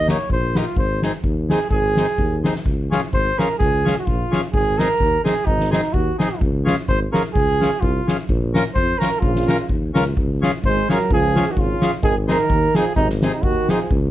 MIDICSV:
0, 0, Header, 1, 6, 480
1, 0, Start_track
1, 0, Key_signature, -5, "major"
1, 0, Tempo, 469116
1, 786, Time_signature, 2, 2, 24, 8
1, 14435, End_track
2, 0, Start_track
2, 0, Title_t, "Flugelhorn"
2, 0, Program_c, 0, 56
2, 101, Note_on_c, 0, 73, 77
2, 297, Note_off_c, 0, 73, 0
2, 328, Note_on_c, 0, 72, 80
2, 582, Note_on_c, 0, 65, 76
2, 598, Note_off_c, 0, 72, 0
2, 793, Note_off_c, 0, 65, 0
2, 800, Note_on_c, 0, 72, 81
2, 1039, Note_off_c, 0, 72, 0
2, 1541, Note_on_c, 0, 68, 79
2, 1738, Note_off_c, 0, 68, 0
2, 1748, Note_on_c, 0, 68, 90
2, 2460, Note_off_c, 0, 68, 0
2, 3211, Note_on_c, 0, 72, 91
2, 3465, Note_on_c, 0, 70, 81
2, 3481, Note_off_c, 0, 72, 0
2, 3661, Note_off_c, 0, 70, 0
2, 3667, Note_on_c, 0, 68, 100
2, 4061, Note_off_c, 0, 68, 0
2, 4078, Note_on_c, 0, 66, 62
2, 4150, Note_on_c, 0, 65, 83
2, 4165, Note_off_c, 0, 66, 0
2, 4524, Note_off_c, 0, 65, 0
2, 4636, Note_on_c, 0, 68, 98
2, 4899, Note_on_c, 0, 70, 95
2, 4914, Note_off_c, 0, 68, 0
2, 5359, Note_off_c, 0, 70, 0
2, 5365, Note_on_c, 0, 68, 81
2, 5586, Note_on_c, 0, 63, 90
2, 5602, Note_off_c, 0, 68, 0
2, 5847, Note_off_c, 0, 63, 0
2, 5853, Note_on_c, 0, 63, 71
2, 6067, Note_on_c, 0, 66, 77
2, 6083, Note_off_c, 0, 63, 0
2, 6327, Note_off_c, 0, 66, 0
2, 6333, Note_on_c, 0, 68, 55
2, 6539, Note_off_c, 0, 68, 0
2, 7043, Note_on_c, 0, 72, 87
2, 7162, Note_off_c, 0, 72, 0
2, 7288, Note_on_c, 0, 70, 79
2, 7390, Note_off_c, 0, 70, 0
2, 7505, Note_on_c, 0, 68, 102
2, 7989, Note_on_c, 0, 65, 82
2, 8004, Note_off_c, 0, 68, 0
2, 8365, Note_off_c, 0, 65, 0
2, 8950, Note_on_c, 0, 72, 96
2, 9192, Note_on_c, 0, 70, 83
2, 9207, Note_off_c, 0, 72, 0
2, 9409, Note_on_c, 0, 65, 85
2, 9425, Note_off_c, 0, 70, 0
2, 9900, Note_off_c, 0, 65, 0
2, 10905, Note_on_c, 0, 72, 97
2, 11135, Note_off_c, 0, 72, 0
2, 11167, Note_on_c, 0, 70, 82
2, 11355, Note_off_c, 0, 70, 0
2, 11388, Note_on_c, 0, 68, 104
2, 11782, Note_on_c, 0, 66, 66
2, 11797, Note_off_c, 0, 68, 0
2, 11861, Note_on_c, 0, 65, 93
2, 11876, Note_off_c, 0, 66, 0
2, 12216, Note_off_c, 0, 65, 0
2, 12317, Note_on_c, 0, 68, 105
2, 12433, Note_off_c, 0, 68, 0
2, 12574, Note_on_c, 0, 70, 89
2, 13046, Note_on_c, 0, 68, 84
2, 13061, Note_off_c, 0, 70, 0
2, 13253, Note_off_c, 0, 68, 0
2, 13259, Note_on_c, 0, 63, 96
2, 13378, Note_off_c, 0, 63, 0
2, 13545, Note_on_c, 0, 63, 68
2, 13743, Note_on_c, 0, 66, 80
2, 13758, Note_off_c, 0, 63, 0
2, 14018, Note_on_c, 0, 68, 65
2, 14033, Note_off_c, 0, 66, 0
2, 14231, Note_off_c, 0, 68, 0
2, 14435, End_track
3, 0, Start_track
3, 0, Title_t, "Accordion"
3, 0, Program_c, 1, 21
3, 75, Note_on_c, 1, 67, 66
3, 77, Note_on_c, 1, 58, 53
3, 79, Note_on_c, 1, 63, 60
3, 180, Note_off_c, 1, 67, 0
3, 181, Note_off_c, 1, 58, 0
3, 182, Note_off_c, 1, 63, 0
3, 566, Note_on_c, 1, 67, 54
3, 568, Note_on_c, 1, 58, 53
3, 571, Note_on_c, 1, 63, 50
3, 665, Note_off_c, 1, 67, 0
3, 666, Note_off_c, 1, 58, 0
3, 668, Note_off_c, 1, 63, 0
3, 1054, Note_on_c, 1, 60, 54
3, 1054, Note_on_c, 1, 68, 61
3, 1055, Note_on_c, 1, 63, 51
3, 1149, Note_off_c, 1, 60, 0
3, 1150, Note_off_c, 1, 63, 0
3, 1150, Note_off_c, 1, 68, 0
3, 1533, Note_on_c, 1, 68, 62
3, 1538, Note_on_c, 1, 60, 56
3, 1539, Note_on_c, 1, 63, 44
3, 1629, Note_off_c, 1, 68, 0
3, 1632, Note_off_c, 1, 60, 0
3, 1632, Note_off_c, 1, 63, 0
3, 2016, Note_on_c, 1, 60, 63
3, 2021, Note_on_c, 1, 68, 65
3, 2022, Note_on_c, 1, 63, 52
3, 2114, Note_off_c, 1, 60, 0
3, 2116, Note_off_c, 1, 63, 0
3, 2116, Note_off_c, 1, 68, 0
3, 2493, Note_on_c, 1, 60, 61
3, 2499, Note_on_c, 1, 68, 67
3, 2501, Note_on_c, 1, 63, 53
3, 2595, Note_off_c, 1, 60, 0
3, 2599, Note_off_c, 1, 63, 0
3, 2599, Note_off_c, 1, 68, 0
3, 2976, Note_on_c, 1, 61, 75
3, 2982, Note_on_c, 1, 68, 84
3, 2983, Note_on_c, 1, 65, 64
3, 3078, Note_off_c, 1, 61, 0
3, 3081, Note_off_c, 1, 68, 0
3, 3082, Note_off_c, 1, 65, 0
3, 3460, Note_on_c, 1, 68, 61
3, 3461, Note_on_c, 1, 61, 57
3, 3467, Note_on_c, 1, 65, 51
3, 3560, Note_off_c, 1, 68, 0
3, 3561, Note_off_c, 1, 61, 0
3, 3564, Note_off_c, 1, 65, 0
3, 3938, Note_on_c, 1, 61, 63
3, 3938, Note_on_c, 1, 65, 59
3, 3938, Note_on_c, 1, 68, 69
3, 4039, Note_off_c, 1, 61, 0
3, 4039, Note_off_c, 1, 65, 0
3, 4039, Note_off_c, 1, 68, 0
3, 4412, Note_on_c, 1, 61, 56
3, 4415, Note_on_c, 1, 68, 61
3, 4418, Note_on_c, 1, 65, 54
3, 4514, Note_off_c, 1, 61, 0
3, 4515, Note_off_c, 1, 68, 0
3, 4517, Note_off_c, 1, 65, 0
3, 4895, Note_on_c, 1, 63, 59
3, 4900, Note_on_c, 1, 60, 68
3, 4900, Note_on_c, 1, 68, 69
3, 4993, Note_off_c, 1, 63, 0
3, 4996, Note_off_c, 1, 60, 0
3, 4996, Note_off_c, 1, 68, 0
3, 5365, Note_on_c, 1, 60, 61
3, 5365, Note_on_c, 1, 63, 50
3, 5368, Note_on_c, 1, 68, 62
3, 5468, Note_off_c, 1, 60, 0
3, 5468, Note_off_c, 1, 63, 0
3, 5470, Note_off_c, 1, 68, 0
3, 5837, Note_on_c, 1, 60, 64
3, 5842, Note_on_c, 1, 63, 57
3, 5842, Note_on_c, 1, 68, 64
3, 5945, Note_off_c, 1, 60, 0
3, 5947, Note_off_c, 1, 63, 0
3, 5947, Note_off_c, 1, 68, 0
3, 6330, Note_on_c, 1, 63, 46
3, 6332, Note_on_c, 1, 60, 57
3, 6335, Note_on_c, 1, 68, 57
3, 6433, Note_off_c, 1, 63, 0
3, 6434, Note_off_c, 1, 60, 0
3, 6435, Note_off_c, 1, 68, 0
3, 6804, Note_on_c, 1, 61, 76
3, 6805, Note_on_c, 1, 65, 60
3, 6806, Note_on_c, 1, 68, 70
3, 6911, Note_off_c, 1, 61, 0
3, 6912, Note_off_c, 1, 65, 0
3, 6913, Note_off_c, 1, 68, 0
3, 7286, Note_on_c, 1, 61, 61
3, 7287, Note_on_c, 1, 65, 51
3, 7294, Note_on_c, 1, 68, 67
3, 7393, Note_off_c, 1, 61, 0
3, 7394, Note_off_c, 1, 65, 0
3, 7398, Note_off_c, 1, 68, 0
3, 7784, Note_on_c, 1, 65, 58
3, 7786, Note_on_c, 1, 61, 65
3, 7792, Note_on_c, 1, 68, 70
3, 7882, Note_off_c, 1, 65, 0
3, 7883, Note_off_c, 1, 61, 0
3, 7886, Note_off_c, 1, 68, 0
3, 8261, Note_on_c, 1, 61, 62
3, 8264, Note_on_c, 1, 65, 55
3, 8265, Note_on_c, 1, 68, 61
3, 8359, Note_off_c, 1, 61, 0
3, 8361, Note_off_c, 1, 65, 0
3, 8361, Note_off_c, 1, 68, 0
3, 8739, Note_on_c, 1, 61, 72
3, 8742, Note_on_c, 1, 70, 81
3, 8745, Note_on_c, 1, 65, 75
3, 8836, Note_off_c, 1, 61, 0
3, 8838, Note_off_c, 1, 70, 0
3, 8839, Note_off_c, 1, 65, 0
3, 9211, Note_on_c, 1, 61, 63
3, 9214, Note_on_c, 1, 70, 64
3, 9217, Note_on_c, 1, 65, 57
3, 9311, Note_off_c, 1, 61, 0
3, 9313, Note_off_c, 1, 70, 0
3, 9315, Note_off_c, 1, 65, 0
3, 9697, Note_on_c, 1, 70, 71
3, 9698, Note_on_c, 1, 65, 54
3, 9701, Note_on_c, 1, 61, 57
3, 9793, Note_off_c, 1, 70, 0
3, 9794, Note_off_c, 1, 65, 0
3, 9795, Note_off_c, 1, 61, 0
3, 10173, Note_on_c, 1, 61, 69
3, 10177, Note_on_c, 1, 65, 52
3, 10180, Note_on_c, 1, 70, 74
3, 10272, Note_off_c, 1, 61, 0
3, 10274, Note_off_c, 1, 65, 0
3, 10276, Note_off_c, 1, 70, 0
3, 10663, Note_on_c, 1, 61, 77
3, 10663, Note_on_c, 1, 65, 72
3, 10663, Note_on_c, 1, 68, 83
3, 10758, Note_off_c, 1, 61, 0
3, 10758, Note_off_c, 1, 68, 0
3, 10759, Note_off_c, 1, 65, 0
3, 11142, Note_on_c, 1, 68, 67
3, 11147, Note_on_c, 1, 61, 50
3, 11147, Note_on_c, 1, 65, 49
3, 11238, Note_off_c, 1, 68, 0
3, 11240, Note_off_c, 1, 61, 0
3, 11240, Note_off_c, 1, 65, 0
3, 11619, Note_on_c, 1, 65, 58
3, 11624, Note_on_c, 1, 61, 64
3, 11626, Note_on_c, 1, 68, 68
3, 11715, Note_off_c, 1, 65, 0
3, 11717, Note_off_c, 1, 61, 0
3, 11718, Note_off_c, 1, 68, 0
3, 12086, Note_on_c, 1, 61, 68
3, 12088, Note_on_c, 1, 65, 54
3, 12091, Note_on_c, 1, 68, 67
3, 12187, Note_off_c, 1, 61, 0
3, 12188, Note_off_c, 1, 65, 0
3, 12189, Note_off_c, 1, 68, 0
3, 12560, Note_on_c, 1, 60, 74
3, 12566, Note_on_c, 1, 63, 60
3, 12568, Note_on_c, 1, 68, 74
3, 12663, Note_off_c, 1, 60, 0
3, 12666, Note_off_c, 1, 63, 0
3, 12667, Note_off_c, 1, 68, 0
3, 13055, Note_on_c, 1, 60, 61
3, 13055, Note_on_c, 1, 63, 61
3, 13059, Note_on_c, 1, 68, 69
3, 13149, Note_off_c, 1, 60, 0
3, 13149, Note_off_c, 1, 63, 0
3, 13151, Note_off_c, 1, 68, 0
3, 13537, Note_on_c, 1, 60, 71
3, 13542, Note_on_c, 1, 63, 65
3, 13544, Note_on_c, 1, 68, 69
3, 13630, Note_off_c, 1, 60, 0
3, 13632, Note_off_c, 1, 63, 0
3, 13634, Note_off_c, 1, 68, 0
3, 14025, Note_on_c, 1, 60, 61
3, 14025, Note_on_c, 1, 68, 61
3, 14026, Note_on_c, 1, 63, 50
3, 14115, Note_off_c, 1, 60, 0
3, 14115, Note_off_c, 1, 68, 0
3, 14116, Note_off_c, 1, 63, 0
3, 14435, End_track
4, 0, Start_track
4, 0, Title_t, "Euphonium"
4, 0, Program_c, 2, 58
4, 9418, Note_on_c, 2, 49, 75
4, 9904, Note_off_c, 2, 49, 0
4, 10907, Note_on_c, 2, 56, 88
4, 11136, Note_off_c, 2, 56, 0
4, 11164, Note_on_c, 2, 54, 74
4, 11353, Note_off_c, 2, 54, 0
4, 11388, Note_on_c, 2, 53, 96
4, 11772, Note_on_c, 2, 51, 56
4, 11788, Note_off_c, 2, 53, 0
4, 11844, Note_on_c, 2, 49, 72
4, 11859, Note_off_c, 2, 51, 0
4, 12207, Note_off_c, 2, 49, 0
4, 12305, Note_on_c, 2, 51, 99
4, 12424, Note_off_c, 2, 51, 0
4, 12575, Note_on_c, 2, 51, 85
4, 13044, Note_on_c, 2, 53, 77
4, 13059, Note_off_c, 2, 51, 0
4, 13250, Note_off_c, 2, 53, 0
4, 13256, Note_on_c, 2, 48, 78
4, 13376, Note_off_c, 2, 48, 0
4, 13514, Note_on_c, 2, 48, 70
4, 13735, Note_on_c, 2, 51, 76
4, 13750, Note_off_c, 2, 48, 0
4, 14013, Note_on_c, 2, 53, 66
4, 14028, Note_off_c, 2, 51, 0
4, 14229, Note_off_c, 2, 53, 0
4, 14435, End_track
5, 0, Start_track
5, 0, Title_t, "Tuba"
5, 0, Program_c, 3, 58
5, 0, Note_on_c, 3, 39, 88
5, 137, Note_off_c, 3, 39, 0
5, 302, Note_on_c, 3, 34, 83
5, 616, Note_off_c, 3, 34, 0
5, 783, Note_on_c, 3, 32, 78
5, 1096, Note_off_c, 3, 32, 0
5, 1265, Note_on_c, 3, 39, 80
5, 1578, Note_off_c, 3, 39, 0
5, 1740, Note_on_c, 3, 32, 85
5, 2058, Note_off_c, 3, 32, 0
5, 2231, Note_on_c, 3, 39, 82
5, 2548, Note_off_c, 3, 39, 0
5, 2716, Note_on_c, 3, 37, 71
5, 3031, Note_off_c, 3, 37, 0
5, 3197, Note_on_c, 3, 32, 76
5, 3370, Note_off_c, 3, 32, 0
5, 3687, Note_on_c, 3, 37, 80
5, 3997, Note_off_c, 3, 37, 0
5, 4162, Note_on_c, 3, 34, 76
5, 4332, Note_off_c, 3, 34, 0
5, 4640, Note_on_c, 3, 32, 82
5, 4949, Note_off_c, 3, 32, 0
5, 5117, Note_on_c, 3, 39, 77
5, 5287, Note_off_c, 3, 39, 0
5, 5588, Note_on_c, 3, 32, 85
5, 5903, Note_off_c, 3, 32, 0
5, 6075, Note_on_c, 3, 39, 78
5, 6247, Note_off_c, 3, 39, 0
5, 6559, Note_on_c, 3, 37, 83
5, 6872, Note_off_c, 3, 37, 0
5, 7042, Note_on_c, 3, 32, 86
5, 7213, Note_off_c, 3, 32, 0
5, 7526, Note_on_c, 3, 37, 81
5, 7837, Note_off_c, 3, 37, 0
5, 8002, Note_on_c, 3, 36, 92
5, 8172, Note_off_c, 3, 36, 0
5, 8482, Note_on_c, 3, 34, 96
5, 8791, Note_off_c, 3, 34, 0
5, 8962, Note_on_c, 3, 41, 86
5, 9130, Note_off_c, 3, 41, 0
5, 9437, Note_on_c, 3, 34, 86
5, 9747, Note_off_c, 3, 34, 0
5, 9919, Note_on_c, 3, 39, 72
5, 10153, Note_off_c, 3, 39, 0
5, 10177, Note_on_c, 3, 37, 77
5, 10373, Note_off_c, 3, 37, 0
5, 10407, Note_on_c, 3, 37, 74
5, 10716, Note_off_c, 3, 37, 0
5, 10878, Note_on_c, 3, 32, 76
5, 11048, Note_off_c, 3, 32, 0
5, 11366, Note_on_c, 3, 37, 91
5, 11673, Note_off_c, 3, 37, 0
5, 11833, Note_on_c, 3, 32, 78
5, 12003, Note_off_c, 3, 32, 0
5, 12311, Note_on_c, 3, 32, 88
5, 12621, Note_off_c, 3, 32, 0
5, 12786, Note_on_c, 3, 39, 86
5, 12956, Note_off_c, 3, 39, 0
5, 13264, Note_on_c, 3, 32, 98
5, 13576, Note_off_c, 3, 32, 0
5, 13740, Note_on_c, 3, 39, 79
5, 13913, Note_off_c, 3, 39, 0
5, 14230, Note_on_c, 3, 37, 91
5, 14435, Note_off_c, 3, 37, 0
5, 14435, End_track
6, 0, Start_track
6, 0, Title_t, "Drums"
6, 86, Note_on_c, 9, 38, 75
6, 188, Note_off_c, 9, 38, 0
6, 306, Note_on_c, 9, 36, 60
6, 408, Note_off_c, 9, 36, 0
6, 565, Note_on_c, 9, 38, 81
6, 667, Note_off_c, 9, 38, 0
6, 783, Note_on_c, 9, 36, 75
6, 885, Note_off_c, 9, 36, 0
6, 1044, Note_on_c, 9, 38, 67
6, 1146, Note_off_c, 9, 38, 0
6, 1266, Note_on_c, 9, 36, 61
6, 1368, Note_off_c, 9, 36, 0
6, 1529, Note_on_c, 9, 38, 75
6, 1632, Note_off_c, 9, 38, 0
6, 1745, Note_on_c, 9, 36, 68
6, 1847, Note_off_c, 9, 36, 0
6, 2010, Note_on_c, 9, 38, 75
6, 2112, Note_off_c, 9, 38, 0
6, 2233, Note_on_c, 9, 36, 58
6, 2335, Note_off_c, 9, 36, 0
6, 2500, Note_on_c, 9, 38, 76
6, 2602, Note_off_c, 9, 38, 0
6, 2615, Note_on_c, 9, 38, 48
6, 2717, Note_off_c, 9, 38, 0
6, 2718, Note_on_c, 9, 36, 68
6, 2820, Note_off_c, 9, 36, 0
6, 2988, Note_on_c, 9, 38, 84
6, 2988, Note_on_c, 9, 44, 42
6, 3090, Note_off_c, 9, 38, 0
6, 3090, Note_off_c, 9, 44, 0
6, 3203, Note_on_c, 9, 36, 63
6, 3306, Note_off_c, 9, 36, 0
6, 3470, Note_on_c, 9, 38, 73
6, 3470, Note_on_c, 9, 44, 41
6, 3572, Note_off_c, 9, 38, 0
6, 3572, Note_off_c, 9, 44, 0
6, 3688, Note_on_c, 9, 36, 68
6, 3790, Note_off_c, 9, 36, 0
6, 3954, Note_on_c, 9, 38, 76
6, 3954, Note_on_c, 9, 44, 46
6, 4056, Note_off_c, 9, 38, 0
6, 4056, Note_off_c, 9, 44, 0
6, 4167, Note_on_c, 9, 36, 62
6, 4269, Note_off_c, 9, 36, 0
6, 4427, Note_on_c, 9, 38, 79
6, 4427, Note_on_c, 9, 44, 47
6, 4530, Note_off_c, 9, 38, 0
6, 4530, Note_off_c, 9, 44, 0
6, 4641, Note_on_c, 9, 36, 74
6, 4744, Note_off_c, 9, 36, 0
6, 4903, Note_on_c, 9, 38, 84
6, 4903, Note_on_c, 9, 44, 48
6, 5005, Note_off_c, 9, 38, 0
6, 5005, Note_off_c, 9, 44, 0
6, 5119, Note_on_c, 9, 36, 61
6, 5221, Note_off_c, 9, 36, 0
6, 5379, Note_on_c, 9, 38, 84
6, 5379, Note_on_c, 9, 44, 46
6, 5482, Note_off_c, 9, 38, 0
6, 5482, Note_off_c, 9, 44, 0
6, 5596, Note_on_c, 9, 36, 72
6, 5698, Note_off_c, 9, 36, 0
6, 5727, Note_on_c, 9, 38, 49
6, 5829, Note_off_c, 9, 38, 0
6, 5861, Note_on_c, 9, 38, 83
6, 5861, Note_on_c, 9, 44, 45
6, 5963, Note_off_c, 9, 38, 0
6, 5963, Note_off_c, 9, 44, 0
6, 6077, Note_on_c, 9, 36, 66
6, 6180, Note_off_c, 9, 36, 0
6, 6341, Note_on_c, 9, 38, 88
6, 6341, Note_on_c, 9, 44, 46
6, 6443, Note_off_c, 9, 38, 0
6, 6443, Note_off_c, 9, 44, 0
6, 6561, Note_on_c, 9, 36, 72
6, 6663, Note_off_c, 9, 36, 0
6, 6826, Note_on_c, 9, 38, 82
6, 6826, Note_on_c, 9, 44, 41
6, 6928, Note_off_c, 9, 38, 0
6, 6928, Note_off_c, 9, 44, 0
6, 7044, Note_on_c, 9, 36, 62
6, 7146, Note_off_c, 9, 36, 0
6, 7306, Note_on_c, 9, 38, 87
6, 7306, Note_on_c, 9, 44, 45
6, 7408, Note_off_c, 9, 38, 0
6, 7408, Note_off_c, 9, 44, 0
6, 7525, Note_on_c, 9, 36, 75
6, 7628, Note_off_c, 9, 36, 0
6, 7787, Note_on_c, 9, 38, 73
6, 7787, Note_on_c, 9, 44, 46
6, 7890, Note_off_c, 9, 38, 0
6, 7890, Note_off_c, 9, 44, 0
6, 8006, Note_on_c, 9, 36, 63
6, 8108, Note_off_c, 9, 36, 0
6, 8268, Note_on_c, 9, 38, 84
6, 8268, Note_on_c, 9, 44, 42
6, 8370, Note_off_c, 9, 38, 0
6, 8370, Note_off_c, 9, 44, 0
6, 8483, Note_on_c, 9, 36, 69
6, 8585, Note_off_c, 9, 36, 0
6, 8748, Note_on_c, 9, 38, 82
6, 8748, Note_on_c, 9, 44, 48
6, 8851, Note_off_c, 9, 38, 0
6, 8851, Note_off_c, 9, 44, 0
6, 8960, Note_on_c, 9, 36, 68
6, 9062, Note_off_c, 9, 36, 0
6, 9224, Note_on_c, 9, 38, 77
6, 9224, Note_on_c, 9, 44, 49
6, 9326, Note_off_c, 9, 38, 0
6, 9326, Note_off_c, 9, 44, 0
6, 9437, Note_on_c, 9, 36, 73
6, 9539, Note_off_c, 9, 36, 0
6, 9569, Note_on_c, 9, 38, 51
6, 9672, Note_off_c, 9, 38, 0
6, 9703, Note_on_c, 9, 38, 88
6, 9703, Note_on_c, 9, 44, 47
6, 9806, Note_off_c, 9, 38, 0
6, 9806, Note_off_c, 9, 44, 0
6, 9919, Note_on_c, 9, 36, 63
6, 10021, Note_off_c, 9, 36, 0
6, 10186, Note_on_c, 9, 38, 88
6, 10186, Note_on_c, 9, 44, 54
6, 10288, Note_off_c, 9, 38, 0
6, 10288, Note_off_c, 9, 44, 0
6, 10405, Note_on_c, 9, 36, 74
6, 10508, Note_off_c, 9, 36, 0
6, 10673, Note_on_c, 9, 38, 82
6, 10673, Note_on_c, 9, 44, 46
6, 10775, Note_off_c, 9, 38, 0
6, 10775, Note_off_c, 9, 44, 0
6, 10884, Note_on_c, 9, 36, 65
6, 10987, Note_off_c, 9, 36, 0
6, 11147, Note_on_c, 9, 38, 81
6, 11147, Note_on_c, 9, 44, 46
6, 11249, Note_off_c, 9, 38, 0
6, 11249, Note_off_c, 9, 44, 0
6, 11363, Note_on_c, 9, 36, 72
6, 11466, Note_off_c, 9, 36, 0
6, 11625, Note_on_c, 9, 38, 81
6, 11625, Note_on_c, 9, 44, 42
6, 11727, Note_off_c, 9, 38, 0
6, 11727, Note_off_c, 9, 44, 0
6, 11837, Note_on_c, 9, 36, 71
6, 11939, Note_off_c, 9, 36, 0
6, 12091, Note_on_c, 9, 38, 85
6, 12091, Note_on_c, 9, 44, 46
6, 12193, Note_off_c, 9, 38, 0
6, 12193, Note_off_c, 9, 44, 0
6, 12312, Note_on_c, 9, 36, 83
6, 12414, Note_off_c, 9, 36, 0
6, 12575, Note_on_c, 9, 38, 79
6, 12575, Note_on_c, 9, 44, 48
6, 12678, Note_off_c, 9, 38, 0
6, 12678, Note_off_c, 9, 44, 0
6, 12788, Note_on_c, 9, 36, 74
6, 12890, Note_off_c, 9, 36, 0
6, 13041, Note_on_c, 9, 38, 86
6, 13041, Note_on_c, 9, 44, 49
6, 13143, Note_off_c, 9, 38, 0
6, 13143, Note_off_c, 9, 44, 0
6, 13264, Note_on_c, 9, 36, 73
6, 13366, Note_off_c, 9, 36, 0
6, 13396, Note_on_c, 9, 38, 52
6, 13498, Note_off_c, 9, 38, 0
6, 13524, Note_on_c, 9, 38, 74
6, 13524, Note_on_c, 9, 44, 51
6, 13627, Note_off_c, 9, 38, 0
6, 13627, Note_off_c, 9, 44, 0
6, 13743, Note_on_c, 9, 36, 72
6, 13845, Note_off_c, 9, 36, 0
6, 14003, Note_on_c, 9, 38, 85
6, 14003, Note_on_c, 9, 44, 51
6, 14105, Note_off_c, 9, 38, 0
6, 14105, Note_off_c, 9, 44, 0
6, 14229, Note_on_c, 9, 36, 82
6, 14331, Note_off_c, 9, 36, 0
6, 14435, End_track
0, 0, End_of_file